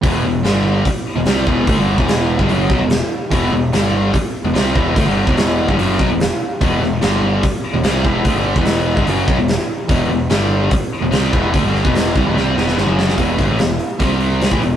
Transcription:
<<
  \new Staff \with { instrumentName = "Distorted electric guitar" } { \clef bass \time 4/4 \key e \minor \tempo 4 = 146 <e, b, e>8 <e, b,>8 <g, d g>4 r8. <e, b,>16 <c g c'>8 <e, b, e>8 | <d a>16 <g, d g>8 <e, b, e>4 <g, d>16 <fis, cis fis>8 <b, fis>16 <e, b,>8 r8. | <e, b, e>8 <e, b,>8 <g, d g>4 r8. <e, b,>16 <c g c'>8 <e, b, e>8 | <d a>16 <g, d g>8 <e, b, e>4 <g, d>16 <fis, cis fis>8 <b, fis>16 <e, b,>8 r8. |
<e, b, e>8 <e, b,>8 <g, d g>4 r8. <e, b,>16 <c g c'>8 <e, b, e>8 | <d a>16 <g, d g>8 <e, b, e>4 <g, d>16 <fis, cis fis>8 <b, fis>16 <e, b,>8 r8. | <e, b, e>8 <e, b,>8 <g, d g>4 r8. <e, b,>16 <c g c'>8 <e, b, e>8 | <d a>16 <g, d g>8 <e, b, e>8. <c g>16 <e, b,>16 <c g c'>8 <e, b, e>8 <g, d>16 <fis, cis fis>8. |
<e, b, e>8 <g, d>16 <a, e>16 <e, b,>8 r8 <c g c'>4~ <c g c'>16 <a, e>16 <e, b,>8 | }
  \new Staff \with { instrumentName = "Distorted electric guitar" } { \clef bass \time 4/4 \key e \minor <e, b, e>8 <e, b,>8 <g, d g>4 r8. <e, b,>16 <c g c'>8 <e, b, e>8 | <d a>16 <g, d g>8 <e, b, e>4 <g, d>16 <fis, cis fis>8 <b, fis>16 <e, b,>8 r8. | <e, b, e>8 <e, b,>8 <g, d g>4 r8. <e, b,>16 <c g c'>8 <e, b, e>8 | <d a>16 <g, d g>8 <e, b, e>4 <g, d>16 <fis, cis fis>8 <b, fis>16 <e, b,>8 r8. |
<e, b, e>8 <e, b,>8 <g, d g>4 r8. <e, b,>16 <c g c'>8 <e, b, e>8 | <d a>16 <g, d g>8 <e, b, e>4 <g, d>16 <fis, cis fis>8 <b, fis>16 <e, b,>8 r8. | <e, b, e>8 <e, b,>8 <g, d g>4 r8. <e, b,>16 <c g c'>8 <e, b, e>8 | <d a>16 <g, d g>8 <e, b, e>8. <c g>16 <e, b,>16 <c g c'>8 <e, b, e>8 <g, d>16 <fis, cis fis>8. |
<e, b, e>8 <g, d>16 <a, e>16 <e, b,>8 r8 <c g c'>4~ <c g c'>16 <a, e>16 <e, b,>8 | }
  \new Staff \with { instrumentName = "Picked electric bass" } { \clef bass \time 4/4 \key e \minor e,,8 e,,8 g,,4 r8. e,,16 c,8 e,,8 | d,16 g,,8 e,,4 g,,16 fis,,8 b,,16 e,,8 r8. | e,,8 e,,8 g,,4 r8. e,,16 c,8 e,,8 | d,16 g,,8 e,,4 g,,16 fis,,8 b,,16 e,,8 r8. |
e,,8 e,,8 g,,4 r8. e,,16 c,8 e,,8 | d,16 g,,8 e,,4 g,,16 fis,,8 b,,16 e,,8 r8. | e,,8 e,,8 g,,4 r8. e,,16 c,8 e,,8 | d,16 g,,8 e,,8. c,16 e,,16 c,8 e,,8 g,,16 fis,,8. |
e,,8 g,,16 a,,16 e,,8 r8 c,4~ c,16 a,,16 e,,8 | }
  \new DrumStaff \with { instrumentName = "Drums" } \drummode { \time 4/4 <hho bd>4 <hho sn>4 <hho bd>4 <hho sn>8 bd8 | <hho bd>8. bd16 <hho sn>8. bd16 hho8 bd8 <hho sn>4 | <hho bd>4 <hho sn>4 <hho bd>4 <hho sn>8 bd8 | <hho bd>8. bd16 <hho sn>8. bd16 hho8 bd8 <hho sn>4 |
<hho bd>8 sn8 <hho sn>4 <hho bd>4 <hho sn>8 bd8 | <hho bd>8. bd16 <hho sn>8. bd16 hho8 bd8 <hho sn>4 | <hho bd>4 <hho sn>4 <hho bd>4 <hho sn>8 bd8 | <hho bd>8 sn16 bd16 <hho sn>8 bd8 sn8 sn16 sn16 sn8 sn16 sn16 |
<hho bd>8 <hho bd>8 <hho sn>8 hho8 <hho bd>8 hho8 <hho sn>16 bd16 hho8 | }
>>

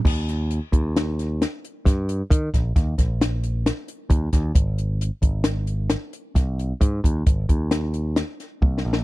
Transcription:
<<
  \new Staff \with { instrumentName = "Picked electric bass" } { \clef bass \time 5/4 \key ees \mixolydian \tempo 4 = 133 ees,4. ees,2 r8 g,4 | ees8 bes,,8 ees,8 bes,,2 r8 ees,8 ees,8 | aes,,4. aes,,2 r8 c,4 | aes,8 ees,8 aes,,8 ees,2 r8 c,8 bes,,8 | }
  \new DrumStaff \with { instrumentName = "Drums" } \drummode { \time 5/4 <cymc bd>8 <hh sn>8 hh8 <hh bd>8 <hh sn>8 <hh sn>8 <hh sn>8 hh8 <hh bd sn>8 hh8 | <hh bd>8 <hh bd sn>8 <hh bd sn>8 <hh bd sn>8 <hh sn>8 hh8 <hh sn>8 hh8 <hh bd>8 <hh bd sn>8 | <hh bd>8 hh8 hh8 <hh bd>8 <hh sn>8 hh8 <hh sn>8 hh8 <hh bd sn>8 hh8 | <hh bd>8 <hh bd>8 <hh bd>8 <hh bd>8 <hh sn>8 hh8 <hh sn>8 <hh sn>8 \tuplet 3/2 { <bd tommh>8 sn8 sn8 } | }
>>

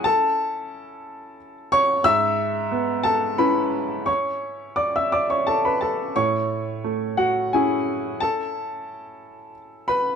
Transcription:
\new Staff \with { instrumentName = "Upright piano" } { \time 3/4 \key cis \phrygian \tempo 4 = 89 << { <a' a''>2 r8 <cis'' cis'''>8 | <e'' e'''>4. <a' a''>8 <b' b''>4 | <cis'' cis'''>4 <d'' d'''>16 <e'' e'''>16 <d'' d'''>16 <cis'' cis'''>16 <a' a''>16 <b' b''>16 <a' a''>8 | <cis'' cis'''>4. <fis' fis''>8 <gis' gis''>4 |
<a' a''>2 r8 <b' b''>8 | } \\ { <cis' e'>2. | gis,4 b4 <cis' e'>4~ | <cis' e'>2. | a,4 a4 <cis' e'>4~ |
<cis' e'>2. | } >> }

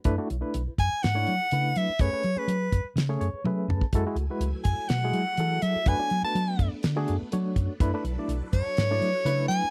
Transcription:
<<
  \new Staff \with { instrumentName = "Soprano saxophone" } { \time 4/4 \key e \mixolydian \tempo 4 = 124 r4. gis''8 fis''4. e''8 | cis''8. b'4 r2 r16 | r4. gis''8 fis''4. e''8 | gis''8. a''4 r2 r16 |
r4. cis''2 gis''8 | }
  \new Staff \with { instrumentName = "Reed electric piano" } { \time 4/4 \key e \mixolydian << { r1 | r2 r8 cis''8 e''8 a''8 | r1 | r1 |
r1 | } \\ { <a d' e' b'>16 <a d' e' fis'>16 e'16 <a d' e' b'>8 <e' b'>16 r8 <e' b'>16 <a d' e' cis''>8 <e' gis'>16 <a d' e' b'>8. r16 | <a cis' gis' b'>16 <a cis' b'>16 r16 <a cis' gis' cis''>8 <gis' b'>16 r8 <gis' cis''>16 <a cis' gis' cis''>8 <gis' b'>16 <a cis' gis' b'>8. r16 | <gis e' fis' a'>16 <gis e' fis' gis'>16 fis'16 <gis e' fis' b'>8 <fis' b'>16 r8 <fis' b'>16 <gis e' fis' gis'>8 <fis' gis'>16 <e' fis' gis' a'>8. r16 | <a d' fis' b'>16 <a d' fis' cis''>16 <fis' cis''>16 <a d' fis' b'>8 <fis' b'>16 r8 <fis' d''>16 <a d' fis' gis'>8 r16 <a d' fis' cis''>8. r16 |
<a d' e' b'>16 <a d' e' b'>16 r16 <a d' e' d''>8 <e' d''>16 r8 <e' b'>16 <a d' e' d''>8 b'16 <a d' e' b'>8. r16 | } >> }
  \new Staff \with { instrumentName = "String machine" } { \time 4/4 \key e \mixolydian r1 | r1 | <fis a e' gis''>1 | <a b d'>1 |
<fis d' a' b'>1 | }
  \new Staff \with { instrumentName = "Fingered electric bass" } { \clef bass \time 4/4 \key e \mixolydian fis,16 r16 b,,16 r16 b,,16 r16 fis,16 r16 gis,8 fis16 r16 cis8 fis16 r16 | fis,16 r16 fis16 r16 fis8 fis,16 r16 cis8 fis,16 r16 fis8 fis,16 r16 | fis,16 r16 cis,16 r16 cis,16 r16 fis,16 r16 b,8 fis16 r16 e8 fis16 r16 | fis,16 r16 fis16 r16 fis8 fis,16 r16 d8 fis,16 r16 fis8 fis,16 r16 |
fis,16 r16 b,,16 r16 b,,16 r16 fis,16 r16 gis,8 fis16 r16 cis8 fis16 r16 | }
  \new DrumStaff \with { instrumentName = "Drums" } \drummode { \time 4/4 <hh bd>8 hh8 hh8 <hh bd>8 <hh sn>8 hh8 hh8 hh8 | <hh bd>8 hh8 hh8 <hh bd>8 <hh sn>8 hh8 tommh8 toml16 bd16 | <hh bd>8 hh8 hh8 <hh bd>8 <hh sn>8 hh8 hh8 hh8 | <hh bd>8 hh8 hh8 <hh bd>8 <hh sn>8 hh8 hh8 <hh bd>8 |
<hh bd>8 hh8 hh8 <hh bd>8 <hh sn>8 hh8 hh8 hh8 | }
>>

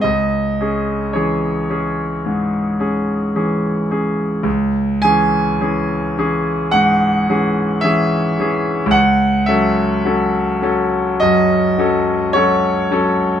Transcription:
\new Staff \with { instrumentName = "Grand piano" } { \time 4/4 \key cis \minor \tempo 4 = 54 << { dis''4 cis''2 r4 | r8 gis''4. fis''4 e''4 | fis''8 e''4. dis''4 cis''4 | } \\ { cis,8 <cis' gis'>8 <e cis' gis'>8 <cis' gis'>8 gis,8 <cis' gis'>8 <e cis' gis'>8 <cis' gis'>8 | cis,8 <e cis' gis'>8 <e cis' gis'>8 <e cis' gis'>8 gis,8 <e cis' gis'>8 <e cis' gis'>8 <e cis' gis'>8 | cis,8 <fis cis' a'>8 <fis cis' a'>8 <fis cis' a'>8 fis,8 <fis cis' a'>8 <fis cis' a'>8 <fis cis' a'>8 | } >> }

